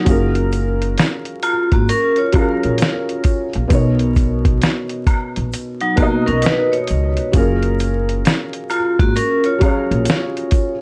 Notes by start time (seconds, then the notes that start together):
Already playing: F#3 D#4
0.04 F#1 F#3 C#4 F4, kick, closed hi-hat, shaker
0.09 G#4 A#4
0.35 closed hi-hat
0.52 closed hi-hat, shaker
0.82 closed hi-hat
0.98 snare, closed hi-hat, shaker
1.25 closed hi-hat
1.43 F4, closed hi-hat, high woodblock, shaker
1.72 G#1 A#3 F#4, kick, closed hi-hat
1.89 C#4 A#4, closed hi-hat, shaker
2.16 F4 C#5, closed hi-hat
2.32 F#3 C#4 F4, kick, closed hi-hat, high woodblock, shaker
2.37 G#4 A#4
2.63 A#1, closed hi-hat
2.78 closed hi-hat, shaker
2.82 snare
3.09 closed hi-hat
3.24 kick, closed hi-hat, shaker
3.53 A#1, closed hi-hat
3.68 B1 B2 B3 D#4, kick, closed hi-hat, shaker
3.73 A#4 C#5
3.99 closed hi-hat
4.16 kick, closed hi-hat, shaker
4.45 kick, closed hi-hat
4.62 snare, closed hi-hat, shaker
4.89 closed hi-hat
5.07 kick, closed hi-hat, high woodblock, shaker
5.36 A#1, closed hi-hat
5.53 closed hi-hat, shaker
5.80 F#3 D#4, closed hi-hat
5.96 B2 A#3 B3 D#4 F#4, kick, closed hi-hat, high woodblock, shaker
6.00 A#4 D#5
6.26 B1 C#4 A#4, closed hi-hat
6.42 D#4 B4, closed hi-hat, shaker
6.46 snare
6.72 C#5, closed hi-hat
6.87 C#2, closed hi-hat, shaker
7.17 closed hi-hat
7.32 F#1 F#3 C#4 F4, kick, closed hi-hat, shaker
7.36 G#4 A#4
7.62 closed hi-hat
7.79 closed hi-hat, shaker
8.09 closed hi-hat
8.25 snare, closed hi-hat, shaker
8.53 closed hi-hat
8.70 F4, closed hi-hat, high woodblock, shaker
8.99 G#1 A#3 F#4, kick, closed hi-hat
9.16 C#4 A#4, closed hi-hat, shaker
9.44 F4 C#5, closed hi-hat
9.59 F#3 C#4 F4, kick, closed hi-hat, high woodblock, shaker
9.63 G#4 C#5
9.91 A#1, closed hi-hat
10.05 closed hi-hat, shaker
10.10 snare
10.37 closed hi-hat
10.51 kick, closed hi-hat, shaker